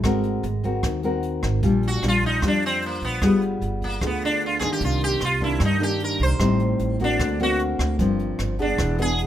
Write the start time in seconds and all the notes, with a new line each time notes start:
0.03 G#1 G#3 C4 F#4 A#4, kick, cross-stick, closed hi-hat
0.24 closed hi-hat
0.43 G#1, closed hi-hat
0.64 C4 F#4 A#4, kick, closed hi-hat
0.83 D#2 D#3, kick, cross-stick, closed hi-hat
1.03 C4 F#4 A#4, closed hi-hat
1.23 closed hi-hat
1.43 G#1, kick, cross-stick, closed hi-hat
1.63 A#1 A#2 G3 D4 F4, kick, closed hi-hat
1.83 closed hi-hat
1.88 F#4
2.03 A#1 G3 D4 F4, cross-stick, closed hi-hat
2.08 F4
2.23 D#4, kick, closed hi-hat
2.42 F2 F3 G3 D4 F4, kick, cross-stick, closed hi-hat
2.48 D4
2.62 closed hi-hat
2.66 C4
2.82 A#3, closed hi-hat
3.02 A#1 B3, kick, closed hi-hat
3.22 G1 G3 B3 F4 G#4, kick, cross-stick, closed hi-hat
3.42 closed hi-hat
3.61 G1, closed hi-hat
3.82 A#3, kick, closed hi-hat
4.01 D2 D3 B3 F4 G#4, kick, cross-stick, closed hi-hat
4.06 B3
4.21 D4, closed hi-hat
4.41 closed hi-hat
4.46 F4
4.59 G1 D#3 A#3 D4 G#4, kick, cross-stick, closed hi-hat
4.72 G4
4.81 C2 C3 F4, kick, closed hi-hat
5.01 G4, closed hi-hat
5.21 C2 F4, cross-stick, closed hi-hat
5.40 D#3 A#3 D4 E4, kick, closed hi-hat
5.60 G2, kick, cross-stick, closed hi-hat
5.65 D#4
5.80 D#3 A#3 D4 G4, closed hi-hat
6.00 A#4, closed hi-hat
6.20 C2 C5, kick, closed hi-hat
6.39 A1 A2 G3 C4 D#4, kick, cross-stick, closed hi-hat
6.60 closed hi-hat
6.79 A1, closed hi-hat
6.99 A#3 C4 F#4, kick, closed hi-hat
7.04 D4
7.19 D2 D3, kick, cross-stick, closed hi-hat
7.39 A#3 C4 F#4, closed hi-hat
7.59 closed hi-hat
7.79 D2, kick, cross-stick, closed hi-hat
7.99 G1 G2 F3 A#3 C4, kick, closed hi-hat
8.19 closed hi-hat
8.39 G1, cross-stick, closed hi-hat
8.59 B3 D4 G#4, kick, closed hi-hat
8.78 E1 E3, kick, cross-stick, closed hi-hat
8.98 B3 D4 G#4, closed hi-hat
9.19 closed hi-hat